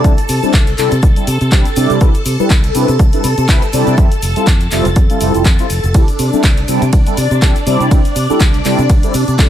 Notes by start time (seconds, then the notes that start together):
Already playing: A4 A5
0.04 C2 G3 C4 D4 E4 A4, kick, closed hi-hat, shaker
0.18 closed hi-hat, shaker
0.29 C3, open hi-hat, shaker
0.42 G3 C4 D4 E4 A4, muted fingered electric bass stroke, shaker
0.54 C2, kick, clap, closed hi-hat, shaker
0.67 closed hi-hat, shaker
0.78 C3 G3 C4 D4 E4 A4, clap, open hi-hat, shaker
0.91 C3, closed hi-hat, shaker
1.02 C2, kick, closed hi-hat, shaker
1.16 G3 C4 D4 E4 A4, closed hi-hat, shaker
1.27 C3, open hi-hat, shaker
1.41 C3, closed hi-hat, shaker
1.52 C2 G3 C4 D4 E4 A4, kick, clap, closed hi-hat, shaker
1.65 closed hi-hat, shaker
1.76 C3 G3 C4 D4 E4 D5, open hi-hat, shaker
1.90 C3, closed hi-hat, shaker
2.01 C2 G3 C4 D4 E4 B4, kick, closed hi-hat, shaker
2.14 closed hi-hat, shaker
2.25 C3, open hi-hat, shaker
2.39 G3 C4 D4 E4 B4, muted fingered electric bass stroke, shaker
2.50 C2, kick, clap, closed hi-hat, shaker
2.64 closed hi-hat, shaker
2.74 C3 G3 C4 D4 E4 B4, open hi-hat, shaker
2.88 C3, closed hi-hat, shaker
2.99 C2, kick, closed hi-hat, shaker
3.13 G3 C4 D4 E4 B4, closed hi-hat, shaker
3.24 C3, open hi-hat, shaker
3.38 C3, closed hi-hat, shaker
3.48 C2 G3 C4 D4 E4 B4, kick, clap, closed hi-hat, shaker
3.62 closed hi-hat, shaker
3.73 C3 G3 C4 D4 E4 D5, open hi-hat, shaker
3.87 C3, closed hi-hat, shaker
3.97 F2 A4, kick, closed hi-hat, shaker
4.12 closed hi-hat, shaker
4.22 F1, open hi-hat, shaker
4.36 G3 C4 E4 F4 A4, closed hi-hat, shaker
4.47 F2, kick, clap, closed hi-hat, shaker
4.61 closed hi-hat, shaker
4.71 F1 G3 C4 E4 F4 A4, clap, open hi-hat, shaker
4.85 F1, closed hi-hat, shaker
4.96 F2, kick, closed hi-hat, shaker
5.10 G3 C4 E4 F4 A4, closed hi-hat, shaker
5.20 F1 G3 C4 E4 F4 A4, open hi-hat, shaker
5.34 F1 G3 C4 E4 F4 A4, closed hi-hat, shaker
5.45 F2, kick, clap, closed hi-hat, shaker
5.59 G3 C4 E4 F4 C5, closed hi-hat, shaker
5.70 F1, open hi-hat, shaker
5.84 F1, closed hi-hat, shaker
5.94 G3 C4 D4 E4 A4 D5, kick, closed hi-hat, ride, shaker
6.08 closed hi-hat, shaker
6.19 C3, open hi-hat, shaker
6.32 G3 C4 D4 E4 A4, muted fingered electric bass stroke, shaker
6.43 C2, kick, clap, closed hi-hat, ride, shaker
6.57 closed hi-hat, shaker
6.68 C3 G3 C4 D4 E4 A4, open hi-hat, shaker
6.82 C3, closed hi-hat, shaker
6.93 C2, kick, closed hi-hat, ride, shaker
7.06 G3 C4 D4 E4 A4, closed hi-hat, shaker
7.17 C3, open hi-hat, shaker
7.31 C3, closed hi-hat, shaker
7.42 C2 G3 C4 D4 E4 A4, kick, clap, closed hi-hat, ride, shaker
7.56 closed hi-hat, shaker
7.66 C3 G3 C4 D4 E4 D5, open hi-hat, shaker
7.80 closed hi-hat, shaker
7.91 C2 G3 C4 D4 E4 A4, kick, closed hi-hat, ride, shaker
8.05 closed hi-hat, shaker
8.16 C3, open hi-hat, shaker
8.29 G3 C4 D4 E4 A4, muted fingered electric bass stroke, shaker
8.40 C2, kick, clap, closed hi-hat, ride, shaker
8.54 closed hi-hat, shaker
8.65 C3 G3 C4 D4 E4 A4, clap, open hi-hat, shaker
8.79 C3, closed hi-hat, shaker
8.90 C2, kick, closed hi-hat, ride, shaker
9.03 G3 C4 D4 E4 A4, closed hi-hat, shaker
9.14 C3, open hi-hat, shaker
9.28 C3, closed hi-hat, shaker
9.38 C2 G3 C4 D4 E4 A4, kick, clap, closed hi-hat, ride, shaker